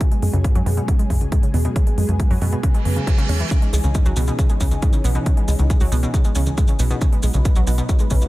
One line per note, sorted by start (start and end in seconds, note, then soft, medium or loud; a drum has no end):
0.00 0.04 C#3 medium
0.00 3.47 F#3 medium
0.00 3.47 G#3 medium
0.00 1.74 C#4 medium
0.00 6.97 G#4 medium
0.00 kick loud
0.00 closed hi-hat medium
0.11 0.16 G#3 medium
0.11 closed hi-hat medium
0.22 0.29 F#2 loud
0.22 0.25 G#3 medium
0.22 open hi-hat loud
0.33 0.36 C#2 loud
0.33 0.47 F#2 medium
0.33 closed hi-hat medium
0.44 0.47 G#2 medium
0.44 kick loud
0.44 closed hi-hat loud
0.55 0.62 F#2 loud
0.55 0.58 F#3 loud
0.55 closed hi-hat medium
0.66 0.80 F#2 loud
0.66 0.71 B2 loud
0.66 open hi-hat loud
0.77 0.82 B2 loud
0.77 closed hi-hat medium
0.88 0.95 C#3 medium
0.88 kick loud
0.88 closed hi-hat loud
0.99 1.04 G#3 medium
0.99 closed hi-hat medium
1.10 1.24 F#2 medium
1.10 1.15 C#3 loud
1.10 kick medium
1.10 open hi-hat loud
1.21 1.24 C#2 loud
1.21 closed hi-hat medium
1.32 1.35 G#2 medium
1.32 kick loud
1.32 closed hi-hat medium
1.43 1.50 C#3 medium
1.43 closed hi-hat medium
1.54 1.68 E2 medium
1.54 1.59 B2 loud
1.54 open hi-hat medium
1.65 1.70 B2 loud
1.65 closed hi-hat medium
1.76 1.79 C#3 medium
1.76 3.49 B3 medium
1.76 kick loud
1.76 closed hi-hat medium
1.87 1.92 G#3 medium
1.87 closed hi-hat medium
1.97 2.05 F#2 loud
1.97 2.01 G#3 medium
1.97 open hi-hat loud
2.08 2.12 C#2 loud
2.08 2.23 F#2 medium
2.08 closed hi-hat medium
2.20 2.23 G#2 medium
2.20 kick loud
2.20 closed hi-hat loud
2.31 2.38 F#2 medium
2.31 2.33 F#3 loud
2.31 open hi-hat medium
2.41 2.55 F#2 loud
2.41 2.46 B2 loud
2.41 open hi-hat loud
2.52 2.57 B2 loud
2.52 closed hi-hat medium
2.63 2.71 C#3 medium
2.63 kick loud
2.63 closed hi-hat medium
2.63 reverse cymbal medium
2.74 2.79 G#3 medium
2.74 closed hi-hat medium
2.85 2.99 F#2 medium
2.85 2.90 C#3 medium
2.85 open hi-hat loud
2.96 3.04 C#3 medium
2.96 closed hi-hat medium
3.07 3.10 C#3 loud
3.07 kick loud
3.07 closed hi-hat medium
3.18 3.21 C#3 loud
3.18 closed hi-hat medium
3.29 3.43 E2 loud
3.29 3.32 C#4 medium
3.29 open hi-hat loud
3.40 3.45 E3 medium
3.40 closed hi-hat medium
3.51 3.54 C#3 medium
3.51 6.98 E3 medium
3.51 6.98 C#4 medium
3.51 6.98 D#4 medium
3.51 kick loud
3.51 closed hi-hat medium
3.51 maracas medium
3.62 3.67 G#3 medium
3.62 closed hi-hat medium
3.73 3.80 C#2 loud
3.73 3.76 G#3 medium
3.73 open hi-hat loud
3.73 maracas loud
3.84 3.98 C#2 medium
3.84 3.87 C#2 loud
3.84 closed hi-hat medium
3.84 maracas soft
3.94 3.98 G#2 medium
3.94 kick loud
3.94 closed hi-hat loud
3.94 maracas medium
4.05 4.13 C#2 medium
4.05 4.09 F#3 loud
4.05 closed hi-hat medium
4.05 maracas soft
4.16 4.31 C#2 loud
4.16 4.22 B2 loud
4.16 open hi-hat loud
4.16 maracas medium
4.27 4.32 B2 loud
4.27 closed hi-hat medium
4.27 maracas soft
4.39 4.46 C#3 medium
4.39 kick loud
4.39 closed hi-hat medium
4.39 maracas soft
4.49 4.54 G#3 medium
4.49 closed hi-hat medium
4.49 maracas soft
4.60 4.75 C#2 medium
4.60 4.65 C#3 loud
4.60 kick medium
4.60 open hi-hat loud
4.60 maracas medium
4.71 4.74 C#2 loud
4.71 closed hi-hat medium
4.71 maracas soft
4.82 4.85 G#2 medium
4.82 kick loud
4.82 closed hi-hat medium
4.82 maracas soft
4.93 5.01 C#3 medium
4.93 closed hi-hat medium
4.93 maracas soft
5.04 5.18 B1 medium
5.04 5.09 B2 loud
5.04 open hi-hat loud
5.04 maracas medium
5.15 5.20 B2 loud
5.15 closed hi-hat medium
5.15 maracas soft
5.26 5.29 C#3 medium
5.26 kick loud
5.26 closed hi-hat medium
5.26 maracas medium
5.37 5.42 G#3 medium
5.37 closed hi-hat medium
5.48 5.55 C#2 loud
5.48 5.51 G#3 medium
5.48 open hi-hat loud
5.48 maracas medium
5.59 5.73 C#2 medium
5.59 5.62 C#2 loud
5.59 closed hi-hat medium
5.59 maracas soft
5.70 5.73 G#2 medium
5.70 kick loud
5.70 closed hi-hat medium
5.70 maracas medium
5.80 5.88 C#2 medium
5.80 5.84 F#3 loud
5.80 open hi-hat medium
5.80 maracas soft
5.92 6.06 C#2 loud
5.92 5.97 B2 loud
5.92 open hi-hat loud
5.92 maracas medium
6.03 6.08 B2 loud
6.03 closed hi-hat medium
6.03 maracas soft
6.14 6.21 C#3 medium
6.14 kick loud
6.14 closed hi-hat medium
6.14 maracas medium
6.24 6.30 G#3 medium
6.24 closed hi-hat medium
6.24 maracas soft
6.35 6.50 C#2 medium
6.35 6.41 C#3 loud
6.35 open hi-hat loud
6.35 maracas loud
6.46 6.50 C#2 loud
6.46 closed hi-hat medium
6.46 maracas soft
6.58 6.60 G#2 medium
6.58 kick loud
6.58 closed hi-hat medium
6.58 maracas medium
6.67 6.76 C#3 medium
6.67 closed hi-hat medium
6.67 maracas soft
6.79 6.93 B1 loud
6.79 6.84 B2 loud
6.79 open hi-hat loud
6.79 maracas loud
6.90 6.95 B2 loud
6.90 closed hi-hat medium
6.90 maracas soft
7.01 7.04 C#3 medium
7.01 8.28 F#3 medium
7.01 8.28 B3 medium
7.01 8.28 D#4 medium
7.01 8.28 B4 medium
7.01 kick loud
7.01 closed hi-hat medium
7.01 maracas medium
7.12 7.17 G#3 medium
7.12 closed hi-hat medium
7.23 7.30 B1 loud
7.23 7.26 G#3 medium
7.23 open hi-hat loud
7.23 maracas loud
7.34 7.48 B1 medium
7.34 7.37 C#2 loud
7.34 closed hi-hat medium
7.34 maracas soft
7.45 7.48 G#2 medium
7.45 kick loud
7.45 closed hi-hat medium
7.45 maracas medium
7.56 7.63 B1 loud
7.56 7.59 F#3 loud
7.56 closed hi-hat medium
7.56 maracas soft
7.67 7.81 B1 loud
7.67 7.72 B2 loud
7.67 open hi-hat loud
7.67 maracas medium
7.78 7.83 B2 loud
7.78 closed hi-hat soft
7.78 maracas soft
7.89 7.96 C#3 medium
7.89 kick loud
7.89 closed hi-hat medium
7.89 maracas medium
7.99 8.05 G#3 medium
7.99 closed hi-hat medium
7.99 maracas soft
8.10 8.25 B1 medium
8.10 8.16 C#3 loud
8.10 kick medium
8.10 open hi-hat loud
8.10 maracas medium
8.21 8.25 C#2 loud
8.21 closed hi-hat soft
8.21 maracas soft